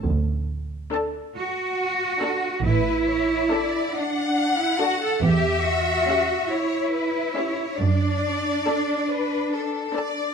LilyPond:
<<
  \new Staff \with { instrumentName = "Violin section" } { \time 12/8 \key d \major \tempo 4. = 46 r4 a''8 r4 a''8 r4 a''8 r4 a''8 | r4 e''8 r4 e''8 r4 a''8 r4 a''8 | }
  \new Staff \with { instrumentName = "Violin section" } { \time 12/8 \key d \major r2. b'8 cis''8 d''8 fis''4. | e''4. cis''8 b'8 cis''8 d''4. b'8 a'8 d''8 | }
  \new Staff \with { instrumentName = "Cello section" } { \time 12/8 \key d \major r4. fis'4. e'4. d'8. e'16 fis'16 a'16 | g'8 fis'4 e'4. d'2. | }
  \new Staff \with { instrumentName = "Viola section" } { \time 12/8 \key d \major r4 <d' a'>8 r4 <d' a'>8 r4 <d' a'>8 r4 <d' a'>8 | r4 <cis' g'>8 r4 <cis' g'>8 r4 <d' a'>8 r4 <d' a'>8 | }
  \new Staff \with { instrumentName = "Double bass section" } { \clef bass \time 12/8 \key d \major d,4. r4. a,,4. r4. | e,4. r4. fis,4. r4. | }
>>